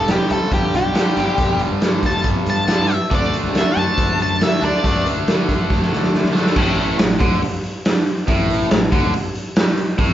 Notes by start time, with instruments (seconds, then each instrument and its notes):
Already playing: overdriven electric guitar G2 D3 G3
0.00 fingered electric bass E1
0.08 lead electric guitar G4, snare, closed hi-hat
0.30 fingered electric bass C#2, lead electric guitar A4, closed hi-hat
0.52 fingered electric bass G1, lead electric guitar G4, kick, closed hi-hat
0.73 fingered electric bass B1, lead electric guitar G4, closed hi-hat
0.94 overdriven electric guitar G2 D3 G3, snare, closed hi-hat
1.15 fingered electric bass G1, overdriven electric guitar G2 D3 G3, closed hi-hat
1.38 fingered electric bass E1, kick, closed hi-hat
1.59 closed hi-hat
1.71 fingered electric bass G2
1.81 snare, closed hi-hat
2.03 fingered electric bass D2, lead electric guitar A5, kick, closed hi-hat
2.24 fingered electric bass G1, kick, closed hi-hat
2.46 fingered electric bass G2, lead electric guitar A5, closed hi-hat
2.67 overdriven electric guitar G2 D3 G3, snare, closed hi-hat
2.79 fingered electric bass G2
2.90 lead electric guitar E5, closed hi-hat
3.10 fingered electric bass D2, overdriven electric guitar D3 A3, kick, closed hi-hat
3.14 overdriven electric guitar D4, lead electric guitar D5
3.33 closed hi-hat
3.44 fingered electric bass C#2, snare
3.55 lead electric guitar E5, snare, closed hi-hat
3.76 fingered electric bass F#2, lead electric guitar A5, closed hi-hat
3.98 fingered electric bass D2, kick, closed hi-hat
4.20 fingered electric bass F#2, lead electric guitar A5, closed hi-hat
4.41 lead electric guitar E5, snare, closed hi-hat
4.61 fingered electric bass D2, overdriven electric guitar A3 D4, lead electric guitar D5, closed hi-hat
4.66 overdriven electric guitar D3
4.83 fingered electric bass C#2, overdriven electric guitar D3 A3 D4, kick, closed hi-hat
5.06 closed hi-hat
5.17 fingered electric bass D3
5.28 snare, closed hi-hat
5.49 fingered electric bass A1, kick, closed hi-hat
5.70 fingered electric bass D2, kick, snare
5.82 snare
5.92 fingered electric bass D3, snare
6.03 snare
6.14 snare
6.24 fingered electric bass D3, snare
6.33 overdriven electric guitar D3 A3 D4, snare
6.46 snare
6.56 fingered electric bass A1, overdriven electric guitar A2, kick, crash
6.78 open hi-hat
6.99 fingered electric bass A1, overdriven electric guitar A2, snare, open hi-hat
7.20 fingered electric bass D2, overdriven electric guitar D3, kick, open hi-hat
7.42 open hi-hat
7.64 open hi-hat
7.85 snare, open hi-hat
8.07 open hi-hat
8.28 fingered electric bass A1, overdriven electric guitar A2, kick, open hi-hat
8.50 open hi-hat
8.70 fingered electric bass A1, overdriven electric guitar A2, snare, open hi-hat
8.92 fingered electric bass D2, overdriven electric guitar D3, kick, open hi-hat
9.14 open hi-hat
9.35 open hi-hat
9.56 snare, open hi-hat
9.77 open hi-hat
9.98 fingered electric bass A1, overdriven electric guitar A2, kick, open hi-hat